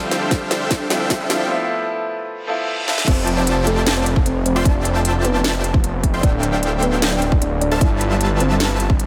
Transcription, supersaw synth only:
0, 0, Header, 1, 2, 480
1, 0, Start_track
1, 0, Tempo, 394737
1, 1819, Time_signature, 4, 2, 24, 8
1, 11022, End_track
2, 0, Start_track
2, 0, Title_t, "Supersaw synth"
2, 0, Program_c, 0, 81
2, 0, Note_on_c, 0, 62, 74
2, 0, Note_on_c, 0, 69, 67
2, 0, Note_on_c, 0, 72, 68
2, 0, Note_on_c, 0, 76, 67
2, 0, Note_on_c, 0, 77, 67
2, 0, Note_on_c, 0, 79, 82
2, 1071, Note_off_c, 0, 62, 0
2, 1071, Note_off_c, 0, 69, 0
2, 1071, Note_off_c, 0, 72, 0
2, 1071, Note_off_c, 0, 76, 0
2, 1071, Note_off_c, 0, 77, 0
2, 1071, Note_off_c, 0, 79, 0
2, 1099, Note_on_c, 0, 62, 91
2, 1099, Note_on_c, 0, 69, 81
2, 1099, Note_on_c, 0, 72, 82
2, 1099, Note_on_c, 0, 76, 82
2, 1099, Note_on_c, 0, 77, 83
2, 1099, Note_on_c, 0, 79, 98
2, 1432, Note_off_c, 0, 62, 0
2, 1432, Note_off_c, 0, 69, 0
2, 1432, Note_off_c, 0, 72, 0
2, 1432, Note_off_c, 0, 76, 0
2, 1432, Note_off_c, 0, 77, 0
2, 1432, Note_off_c, 0, 79, 0
2, 1461, Note_on_c, 0, 62, 71
2, 1461, Note_on_c, 0, 69, 65
2, 1461, Note_on_c, 0, 72, 67
2, 1461, Note_on_c, 0, 76, 66
2, 1461, Note_on_c, 0, 77, 65
2, 1461, Note_on_c, 0, 79, 79
2, 1791, Note_off_c, 0, 62, 0
2, 1791, Note_off_c, 0, 69, 0
2, 1791, Note_off_c, 0, 72, 0
2, 1791, Note_off_c, 0, 76, 0
2, 1791, Note_off_c, 0, 77, 0
2, 1791, Note_off_c, 0, 79, 0
2, 3741, Note_on_c, 0, 65, 75
2, 3741, Note_on_c, 0, 72, 67
2, 3741, Note_on_c, 0, 74, 69
2, 3741, Note_on_c, 0, 76, 70
2, 3741, Note_on_c, 0, 79, 69
2, 3741, Note_on_c, 0, 81, 81
2, 4912, Note_off_c, 0, 65, 0
2, 4912, Note_off_c, 0, 72, 0
2, 4912, Note_off_c, 0, 74, 0
2, 4912, Note_off_c, 0, 76, 0
2, 4912, Note_off_c, 0, 79, 0
2, 4912, Note_off_c, 0, 81, 0
2, 5542, Note_on_c, 0, 65, 94
2, 5542, Note_on_c, 0, 72, 88
2, 5542, Note_on_c, 0, 74, 89
2, 5542, Note_on_c, 0, 76, 88
2, 5542, Note_on_c, 0, 79, 90
2, 5542, Note_on_c, 0, 84, 108
2, 5642, Note_off_c, 0, 65, 0
2, 5642, Note_off_c, 0, 72, 0
2, 5642, Note_off_c, 0, 74, 0
2, 5642, Note_off_c, 0, 76, 0
2, 5642, Note_off_c, 0, 79, 0
2, 5642, Note_off_c, 0, 84, 0
2, 5659, Note_on_c, 0, 65, 75
2, 5659, Note_on_c, 0, 72, 68
2, 5659, Note_on_c, 0, 81, 84
2, 6831, Note_off_c, 0, 65, 0
2, 6831, Note_off_c, 0, 72, 0
2, 6831, Note_off_c, 0, 81, 0
2, 7461, Note_on_c, 0, 65, 99
2, 7461, Note_on_c, 0, 72, 86
2, 7461, Note_on_c, 0, 74, 89
2, 7461, Note_on_c, 0, 76, 89
2, 7461, Note_on_c, 0, 79, 89
2, 7461, Note_on_c, 0, 84, 106
2, 7562, Note_off_c, 0, 65, 0
2, 7562, Note_off_c, 0, 72, 0
2, 7562, Note_off_c, 0, 74, 0
2, 7562, Note_off_c, 0, 76, 0
2, 7562, Note_off_c, 0, 79, 0
2, 7562, Note_off_c, 0, 84, 0
2, 7579, Note_on_c, 0, 72, 69
2, 7580, Note_on_c, 0, 62, 73
2, 7580, Note_on_c, 0, 76, 68
2, 7580, Note_on_c, 0, 77, 68
2, 7580, Note_on_c, 0, 79, 82
2, 8751, Note_off_c, 0, 62, 0
2, 8751, Note_off_c, 0, 72, 0
2, 8751, Note_off_c, 0, 76, 0
2, 8751, Note_off_c, 0, 77, 0
2, 8751, Note_off_c, 0, 79, 0
2, 9380, Note_on_c, 0, 81, 106
2, 9381, Note_on_c, 0, 62, 98
2, 9381, Note_on_c, 0, 69, 86
2, 9381, Note_on_c, 0, 72, 89
2, 9381, Note_on_c, 0, 76, 89
2, 9381, Note_on_c, 0, 77, 90
2, 9481, Note_off_c, 0, 81, 0
2, 9482, Note_off_c, 0, 62, 0
2, 9482, Note_off_c, 0, 69, 0
2, 9482, Note_off_c, 0, 72, 0
2, 9482, Note_off_c, 0, 76, 0
2, 9482, Note_off_c, 0, 77, 0
2, 9500, Note_on_c, 0, 55, 72
2, 9500, Note_on_c, 0, 65, 67
2, 10671, Note_off_c, 0, 55, 0
2, 10671, Note_off_c, 0, 65, 0
2, 11022, End_track
0, 0, End_of_file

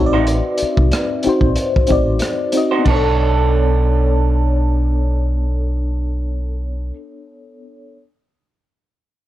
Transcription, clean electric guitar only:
0, 0, Header, 1, 2, 480
1, 0, Start_track
1, 0, Key_signature, 2, "minor"
1, 0, Tempo, 645161
1, 203, Time_signature, 4, 2, 24, 8
1, 6902, End_track
2, 0, Start_track
2, 0, Title_t, "Clean electric guitar"
2, 0, Program_c, 0, 27
2, 97, Note_on_c, 0, 72, 58
2, 102, Note_on_c, 0, 66, 55
2, 106, Note_on_c, 0, 63, 47
2, 185, Note_off_c, 0, 72, 0
2, 187, Note_off_c, 0, 66, 0
2, 189, Note_off_c, 0, 63, 0
2, 2018, Note_on_c, 0, 72, 50
2, 2022, Note_on_c, 0, 66, 41
2, 2029, Note_on_c, 0, 63, 40
2, 2105, Note_off_c, 0, 72, 0
2, 2107, Note_off_c, 0, 66, 0
2, 2111, Note_off_c, 0, 63, 0
2, 2120, Note_on_c, 0, 62, 67
2, 2142, Note_on_c, 0, 69, 66
2, 2158, Note_on_c, 0, 73, 72
2, 5158, Note_off_c, 0, 62, 0
2, 5169, Note_off_c, 0, 69, 0
2, 5177, Note_off_c, 0, 73, 0
2, 6902, End_track
0, 0, End_of_file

